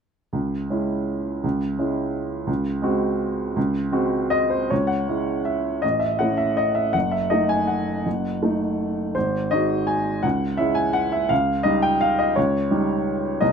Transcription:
0.33 C#2
0.70 G#3 C#4 E4
1.44 C#2
1.79 G#3 C#4 E4
2.47 C#2
2.82 G#3 C4 F#4
3.56 C#2
3.92 G#3 C4 F#4
4.30 D#5
4.50 C5
4.70 C#2 C#5
4.87 F#5
5.08 G#3 C#4 E4
5.45 E5
5.82 A1 D#5
5.99 E5
6.19 A3 C#4 E4 F#5
6.37 E5
6.57 D#5
6.75 E5
6.93 F#1 F#5
7.11 E5
7.30 A3 D#4 D#5
7.49 G#5
7.67 F#5
8.06 F#1
8.43 A3 D#4
9.15 G#1 C5
9.51 G#3 D#4 F#4 D#5
9.87 G#5
10.23 C#2 F#5
10.57 G#3 C#4 E4 E5
10.75 G#5
10.93 F#5
11.12 E5
11.29 C#2 F5
11.63 G3 D#4 D#5
11.82 G5
12.01 F5
12.19 D#5
12.36 C#2 C#5
12.71 G3 D#4
13.41 C2 D#5

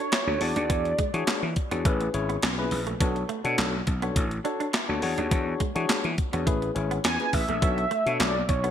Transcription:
Already playing: C#5
0.12 E4, snare, clap, closed hi-hat
0.27 D2 D4 F#4 A4 C#5, muted clean electric guitar stroke
0.41 E2 D4 F#4 G#4 D5, open hi-hat
0.56 D#2 D4, closed hi-hat
0.70 E2 B3, kick, closed hi-hat
0.85 closed hi-hat
0.98 G#3, kick, closed hi-hat
1.14 E3 D4 F#4 G#4 C#5, muted clean electric guitar stroke, closed hi-hat
1.27 G#3, muted slap bass stroke, snare, clap, closed hi-hat
1.43 E3, muted clean electric guitar stroke
1.56 kick, closed hi-hat
1.71 E2 B3 D4 F#4 G#4 C#5, closed hi-hat
1.85 A1 A3 C#4 E4 G#4 B4, kick, closed hi-hat
2.00 muted clean electric guitar stroke, closed hi-hat
2.13 G#1 C#4 E4 G#4 C#5, closed hi-hat
2.29 B3, closed hi-hat
2.42 B1 C#4, snare, clap, closed hi-hat
2.58 C#4 E4 G#4 B4
2.71 A#1, muted clean electric guitar stroke, open hi-hat
2.87 A3, closed hi-hat
3.00 B1 B3 D4 F#4 A4 C#5, kick, closed hi-hat
3.16 muted clean electric guitar stroke, closed hi-hat
3.29 A3, closed hi-hat
3.44 B2 D4 F#4 A4 C#5, closed hi-hat
3.58 B1 A3, snare, clap, closed hi-hat
3.87 B1, muted clean electric guitar stroke, kick, closed hi-hat
4.02 B3 D4 F#4 A4 C#5, closed hi-hat
4.16 A1, muted clean electric guitar stroke, kick, closed hi-hat
4.31 closed hi-hat
4.44 D4 F#4 A4 C#5, closed hi-hat
4.60 D4, closed hi-hat
4.73 E4, snare, clap, closed hi-hat
4.89 D2 D4 F#4 A4 C#5, muted clean electric guitar stroke
5.02 E2 D4 F#4 G#4 C#5, open hi-hat
5.18 D#2 D4, closed hi-hat
5.31 E2 B3, kick, closed hi-hat
5.60 G#3, kick, closed hi-hat
5.75 E3 D4 F#4 G#4 C#5, muted clean electric guitar stroke, closed hi-hat
5.89 G#3, muted slap bass stroke, snare, clap, closed hi-hat
6.04 E3, muted clean electric guitar stroke, closed hi-hat
6.18 kick, closed hi-hat
6.33 E2 B3 D4 F#4 G#4 C#5, closed hi-hat
6.46 A1 A3 C#4 E4 G#4 B4, kick, closed hi-hat
6.62 muted clean electric guitar stroke, closed hi-hat
6.75 G#1 C#4 E4 G#4 C#5, closed hi-hat
6.91 B3, closed hi-hat
7.04 E2 C#4 G#5, snare, clap, closed hi-hat
7.19 C#4 E4 G#4 B4, closed hi-hat
7.33 A1 E5, muted clean electric guitar stroke, kick, open hi-hat
7.49 A#1 A3, closed hi-hat
7.62 B1 B3 D4 F#4 A4 C#5, kick, closed hi-hat
7.78 muted clean electric guitar stroke, closed hi-hat
7.91 A3, closed hi-hat
8.06 B2 D4 F#4 A4 C#5, closed hi-hat
8.20 B1 A3 D5, snare, clap, closed hi-hat
8.49 B1 C#5, muted clean electric guitar stroke, kick, closed hi-hat
8.64 B3 D4 F#4 A4 C#5, closed hi-hat

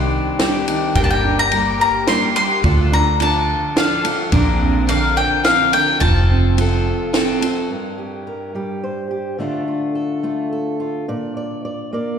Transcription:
Already playing: C2 D#3 G3 C4 D4 G4
0.39 G3 C4 D4 G4, snare, ride
0.68 D#3, ride
0.95 G1 G2 D3 G3 A#3 G4 A#4 G5, kick, ride
1.04 A5
1.11 G5
1.24 D4
1.39 A#5
1.51 G3 A#3 G4, ride
1.55 A#4
1.80 G3 A#3 G4 A#4 A#5
2.07 G3 A#3 D4 G4 A#4 C6, snare, ride
2.35 G3 A#3 G4 A#4 C6, ride
2.63 D2 D3 F3 D4 F4 A4, kick, ride
2.92 D4 A#5
3.20 F3 D4 F4 A4 A5, ride
3.76 F3 D4 F4 A4 F5, snare, ride
4.04 F3 D4 F4 A4, ride
4.32 A#1 A#2 D3 F3 C4 D4 A#4, kick, ride
4.61 C4
4.87 D3 F3 C4 D4 A#4 F5, ride
5.16 F3 C4 D4 A#4 G5
5.43 F3 C4 D4 F5, snare, ride
5.47 A#4
5.73 D3 G5, ride
6.00 F1 F3 C4 F4 A4 A5, kick, ride
6.30 C4
6.57 F3 C4 F4 A4, ride
7.13 F3 C4 F4 A4, snare, ride
7.41 F3 C4 F4 A4, ride
7.70 G2 A#4
7.98 G4
8.27 A#4
8.55 G3 G4
8.84 C5
9.11 G4
9.38 D3 A3 D4 F4 A4
9.68 F4
9.95 A4
10.23 A3 F4
10.53 A4
10.80 F4
11.08 A#2 D5
11.37 D5
11.65 D5
11.93 A#3 D5

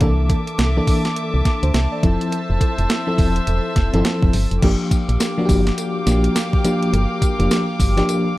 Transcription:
Already playing: A#3
0.01 C2 E3 A#3 D4 A4 E5 A5 D6, kick, closed hi-hat, cowbell
0.30 kick, closed hi-hat, cowbell
0.47 closed hi-hat
0.58 C2, snare, closed hi-hat, cowbell
0.76 E3 A#3 D4 A4
0.87 kick, open hi-hat
1.05 snare, closed hi-hat
1.16 closed hi-hat, cowbell
1.34 C2
1.45 kick, snare, closed hi-hat
1.63 D2 C5, closed hi-hat
1.74 C2 E5, snare, closed hi-hat, cowbell
1.92 D5
2.03 F1 F3 C4 E4 A4 C5 E5 E6, kick, closed hi-hat
2.21 closed hi-hat
2.32 closed hi-hat, cowbell
2.50 F1
2.61 kick, closed hi-hat, cowbell
2.78 F1, closed hi-hat
2.89 snare, closed hi-hat, cowbell
3.07 F3 C4 E4 A4
3.18 E1, kick, open hi-hat
3.36 closed hi-hat
3.47 E1, closed hi-hat, cowbell
3.76 F1, kick, snare, closed hi-hat
3.93 G1 F3 C4 E4 A4, closed hi-hat
4.05 F3 C4 E4 A4, snare, closed hi-hat, cowbell
4.23 F1, kick
4.33 G1, open hi-hat
4.51 F1, closed hi-hat
4.62 G1 F3 A#3 D4 G4 F5 G5 D6, kick, closed hi-hat, crash, cowbell
4.91 kick, closed hi-hat, tambourine
5.09 A#1, closed hi-hat
5.20 snare, closed hi-hat, tambourine, cowbell
5.38 F3 A#3 D4 F#4
5.45 G1 G4, kick, tambourine
5.49 open hi-hat
5.67 snare, closed hi-hat
5.78 closed hi-hat, tambourine, cowbell
6.06 A#1 F3 A#3 D4 G4, snare, closed hi-hat, tambourine
6.24 closed hi-hat
6.35 snare, closed hi-hat, tambourine, cowbell
6.53 kick
6.64 F3 A#3 D4 G4, closed hi-hat, tambourine
6.83 closed hi-hat
6.93 G1, closed hi-hat, cowbell
7.22 kick, closed hi-hat, tambourine
7.39 F1 F3 A#3 D4 G4, closed hi-hat
7.51 snare, closed hi-hat, tambourine, cowbell
7.80 G1, kick, open hi-hat, tambourine
7.97 F3 A#3 D4 G4, snare, closed hi-hat
8.08 closed hi-hat, tambourine, cowbell

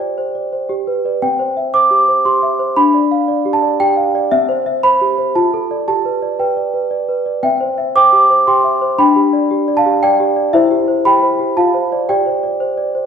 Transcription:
Already playing: G4 C5 G5
0.00 D5
0.18 C5
0.35 D5
0.53 C5
0.69 G4
0.87 B4
1.05 B4 D5
1.22 C4 G5
1.39 C5
1.57 E5
1.74 C5 D6
1.91 G4
2.08 C5
2.25 G4 C6
2.43 E5
2.59 C5
2.76 D4 B5
2.94 D5
3.11 F5
3.28 D5
3.45 G4
3.53 A5
3.62 D5
3.80 G4 G5
3.97 F5
4.15 D5
4.31 C4 E5
4.49 C5
4.66 E5
4.83 C5 B5
5.01 G4
5.18 C5
5.35 F4 A5
5.54 A4
5.70 A4 D5
5.88 G4 A5
6.05 B4
6.22 D5
6.40 B4 G5
6.57 D5
6.74 B4
6.91 D5
7.09 B4
7.26 D5
7.43 C4 E5 G5
7.61 C5
7.78 E5
7.95 C5 G5 D6
8.13 G4
8.30 C5
8.47 G4 G5 C6
8.64 E5
8.81 C5
8.98 D4 G5 B5
9.16 G4
9.33 D5
9.51 G4
9.68 D5
9.77 F5 A5
9.86 G4
10.03 D5 G5
10.20 G4
10.37 D5
10.53 E4 C5 E5
10.71 G4
10.88 C5
11.05 G4 G5 B5
11.22 C5
11.39 G4
11.57 F4 F5 A5
11.74 C5
11.92 C5 D5
12.09 G4 D5 G5
12.26 C5
12.43 D5
12.60 C5
12.77 D5
12.95 C5

